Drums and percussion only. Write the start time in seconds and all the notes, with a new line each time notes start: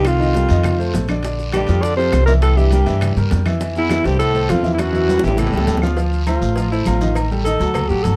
0.05 high bongo, high conga, high timbale, long guiro, claves, maracas
0.20 high bongo, high conga, maracas
0.34 high bongo, high conga, high timbale, short guiro, maracas
0.49 high bongo, high timbale, short guiro, maracas
0.63 high bongo, high conga, low conga, high timbale, long guiro, claves, maracas
0.80 high conga, maracas
0.93 high bongo, low bongo, high conga, high timbale, low timbale, short guiro, maracas
1.08 high bongo, high conga, high timbale, short guiro, claves, maracas
1.22 high bongo, high conga, high timbale, long guiro, maracas
1.39 high bongo, high conga, maracas
1.52 high bongo, high conga, high timbale, short guiro, claves, maracas
1.67 high bongo, high conga, high timbale, short guiro, maracas
1.83 high bongo, high conga, long guiro, maracas
1.98 high conga, maracas
2.12 high bongo, low bongo, high conga, high timbale, low timbale, short guiro, claves, maracas
2.27 high bongo, high conga, short guiro, maracas
2.42 high bongo, high conga, high timbale, long guiro, claves, maracas
2.58 high bongo, high conga, maracas
2.71 high bongo, high conga, high timbale, short guiro, maracas
2.86 high bongo, high timbale, short guiro, maracas
3.01 high bongo, high conga, low conga, high timbale, long guiro, claves, maracas
3.17 high conga, low conga, maracas
3.31 high bongo, low bongo, high conga, high timbale, low timbale, short guiro, maracas
3.46 high bongo, high conga, high timbale, short guiro, claves, maracas
3.61 high bongo, high conga, high timbale, long guiro, maracas
3.76 high bongo, high conga, maracas
3.90 high bongo, high conga, high timbale, short guiro, claves, maracas
4.04 high bongo, high conga, high timbale, short guiro, maracas
4.20 high bongo, high conga, long guiro, maracas
4.35 high conga, maracas
4.49 high bongo, low bongo, high conga, high timbale, low timbale, short guiro, claves, maracas
4.64 high bongo, high conga, short guiro, maracas
4.79 high bongo, high conga, high timbale, long guiro, claves, maracas
4.95 high conga, maracas
5.08 high conga, high timbale, short guiro, maracas
5.18 high bongo, high timbale
5.23 short guiro, maracas
5.28 low bongo, high timbale
5.37 low bongo, high conga, low conga, low timbale, long guiro, claves, maracas
5.47 low timbale
5.53 high conga, maracas
5.57 low bongo, low timbale
5.67 low bongo, high conga, low timbale, short guiro, maracas
5.77 low bongo, low timbale
5.82 high conga, short guiro, claves, maracas
5.86 low bongo, low timbale
5.97 cowbell, high conga, long guiro, maracas
6.12 high conga, maracas
6.26 cowbell, high conga, low agogo, short guiro, claves, maracas
6.42 high conga, short guiro, maracas
6.56 cowbell, high conga, low agogo, long guiro, maracas
6.71 high conga, maracas
6.85 cowbell, high conga, low timbale, low agogo, short guiro, claves, maracas
7.01 cowbell, high conga, short guiro, maracas
7.15 cowbell, high conga, low agogo, long guiro, claves, maracas
7.30 high conga, maracas
7.45 cowbell, high conga, low agogo, short guiro, maracas
7.60 cowbell, low agogo, short guiro, maracas
7.74 cowbell, high conga, low conga, low agogo, long guiro, claves, maracas
7.89 high conga, maracas
8.04 cowbell, high conga, low timbale, low agogo, short guiro, maracas